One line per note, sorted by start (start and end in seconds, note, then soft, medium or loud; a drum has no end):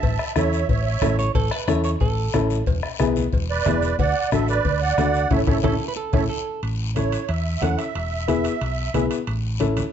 0.00 0.16 A1 medium
0.00 0.33 E5 medium
0.00 0.33 A5 medium
0.00 bombo low medium
0.00 cowbell loud
0.00 long guiro medium
0.19 bombo rim medium
0.36 0.63 E2 medium
0.36 0.59 C#4 medium
0.36 0.59 E4 medium
0.36 0.59 A4 medium
0.36 0.67 C#5 medium
0.36 0.68 E5 medium
0.36 bombo rim medium
0.36 cowbell medium
0.36 high conga medium
0.36 short guiro medium
0.53 short guiro medium
0.69 0.95 A1 medium
0.69 0.85 C#5 medium
0.69 0.84 E5 medium
0.69 bombo low medium
0.69 cowbell medium
0.69 long guiro medium
0.85 1.17 C#5 medium
0.85 1.16 E5 medium
1.02 1.28 A1 loud
1.02 1.25 C#4 medium
1.02 1.25 E4 medium
1.02 1.25 A4 medium
1.02 bombo rim medium
1.02 cowbell medium
1.02 high conga medium
1.02 low conga medium
1.02 low timbale medium
1.02 short guiro medium
1.19 1.35 C#5 medium
1.19 short guiro medium
1.35 1.48 A1 medium
1.35 1.52 A4 medium
1.35 bombo low medium
1.35 cowbell loud
1.35 long guiro medium
1.51 1.68 B4 medium
1.51 bombo rim medium
1.68 1.94 E2 medium
1.68 1.91 C#4 medium
1.68 1.91 E4 medium
1.68 1.92 A4 medium
1.68 1.84 C#5 medium
1.68 bombo rim medium
1.68 cowbell medium
1.68 high conga medium
1.68 short guiro medium
1.84 1.90 C#5 medium
1.84 short guiro medium
2.00 2.27 A1 medium
2.00 2.63 A4 medium
2.00 bombo low medium
2.00 cowbell medium
2.00 long guiro medium
2.33 2.60 A1 loud
2.33 2.57 C#4 medium
2.33 2.57 E4 medium
2.33 2.58 A4 medium
2.33 bombo rim medium
2.33 cowbell medium
2.33 high conga medium
2.33 low timbale medium
2.33 short guiro medium
2.50 short guiro medium
2.66 2.80 E1 medium
2.66 bombo low medium
2.66 cowbell loud
2.66 long guiro medium
2.83 bombo rim medium
2.99 3.26 B1 medium
2.99 3.23 B3 medium
2.99 3.23 E4 medium
2.99 3.23 G#4 medium
2.99 bombo rim medium
2.99 cowbell medium
2.99 high conga medium
2.99 short guiro medium
3.16 high conga medium
3.16 short guiro medium
3.32 3.59 E1 medium
3.32 bombo low medium
3.32 cowbell medium
3.32 long guiro medium
3.50 3.96 B4 medium
3.50 3.96 D5 loud
3.66 3.92 E1 loud
3.66 3.89 B3 medium
3.66 3.89 E4 medium
3.66 3.90 G#4 medium
3.66 bombo rim medium
3.66 cowbell medium
3.66 high conga medium
3.66 low conga medium
3.66 low timbale medium
3.66 short guiro medium
3.82 short guiro medium
3.99 4.12 D2 medium
3.99 4.30 D5 loud
3.99 4.30 F#5 loud
3.99 bombo low medium
3.99 cowbell loud
3.99 long guiro medium
4.31 4.58 A1 medium
4.31 4.55 D4 medium
4.31 4.55 F#4 medium
4.31 4.48 A4 medium
4.31 4.56 A4 medium
4.31 4.48 E5 medium
4.31 bombo rim medium
4.31 cowbell medium
4.31 high conga medium
4.31 short guiro medium
4.48 4.80 B4 medium
4.48 4.81 D5 loud
4.48 short guiro medium
4.65 4.91 D2 medium
4.65 bombo low medium
4.65 cowbell medium
4.65 long guiro medium
4.82 5.28 D5 medium
4.82 5.33 F#5 loud
4.98 5.24 D2 medium
4.98 5.21 D4 medium
4.98 5.21 F#4 medium
4.98 5.21 A4 medium
4.98 bombo rim medium
4.98 cowbell medium
4.98 high conga medium
4.98 low timbale medium
4.98 short guiro medium
5.14 short guiro medium
5.31 5.43 A1 medium
5.31 5.42 C#4 medium
5.31 5.42 E4 medium
5.31 5.41 A4 loud
5.31 5.42 A4 medium
5.31 5.41 C#5 loud
5.31 5.42 E5 loud
5.31 bombo low loud
5.31 high conga loud
5.31 high timbale medium
5.31 long guiro loud
5.47 5.60 A1 loud
5.47 5.58 C#4 medium
5.47 5.58 E4 medium
5.47 5.58 A4 medium
5.47 5.58 C#5 medium
5.47 5.58 E5 medium
5.47 bombo low medium
5.47 high conga medium
5.47 high timbale medium
5.47 long guiro loud
5.63 5.76 A1 medium
5.63 5.74 C#4 loud
5.63 5.74 E4 medium
5.63 5.74 A4 loud
5.63 5.74 A4 medium
5.63 5.88 A4 medium
5.63 5.74 C#5 medium
5.63 5.74 E5 medium
5.63 bombo low medium
5.63 high conga loud
5.63 high timbale loud
5.63 long guiro medium
5.88 5.96 B4 medium
5.97 6.28 A4 medium
6.13 6.26 A1 loud
6.13 6.24 C#4 medium
6.13 6.24 E4 medium
6.13 6.24 A4 medium
6.13 6.24 C#5 loud
6.13 6.24 E5 loud
6.13 bombo low loud
6.13 high conga loud
6.13 high timbale medium
6.13 long guiro medium
6.30 6.60 A4 medium
6.63 7.16 A1 medium
6.63 high timbale medium
6.63 long guiro medium
6.96 7.19 C#4 medium
6.96 7.19 E4 medium
6.96 7.19 A4 medium
6.96 7.30 C#5 medium
6.96 high conga medium
6.96 high timbale medium
6.96 short guiro medium
7.12 high timbale medium
7.12 short guiro medium
7.28 7.55 E2 medium
7.28 7.63 E5 medium
7.28 high timbale medium
7.28 long guiro medium
7.61 7.75 E2 medium
7.61 7.85 C#4 medium
7.61 7.85 E4 medium
7.61 7.85 A4 medium
7.61 7.79 F#5 loud
7.61 high conga medium
7.61 high timbale medium
7.61 low timbale medium
7.61 short guiro medium
7.77 9.06 E5 medium
7.77 high timbale medium
7.77 short guiro medium
7.95 8.48 E1 medium
7.95 high timbale medium
7.95 long guiro medium
8.28 8.51 B3 medium
8.28 8.51 E4 medium
8.28 8.51 G#4 medium
8.28 high conga medium
8.28 high timbale medium
8.28 short guiro medium
8.44 high timbale medium
8.44 short guiro medium
8.61 8.88 B1 medium
8.61 high timbale medium
8.61 long guiro medium
8.94 9.07 B1 medium
8.94 9.17 B3 medium
8.94 9.18 E4 medium
8.94 9.18 G#4 medium
8.94 high conga medium
8.94 high timbale medium
8.94 low timbale medium
8.94 short guiro medium
9.11 high timbale medium
9.11 short guiro medium
9.27 9.80 A1 medium
9.27 high timbale medium
9.27 long guiro medium
9.60 9.83 C#4 medium
9.60 9.83 E4 medium
9.60 9.84 A4 medium
9.60 high conga medium
9.60 high timbale medium
9.60 short guiro medium
9.77 high conga medium
9.77 high timbale medium
9.77 short guiro medium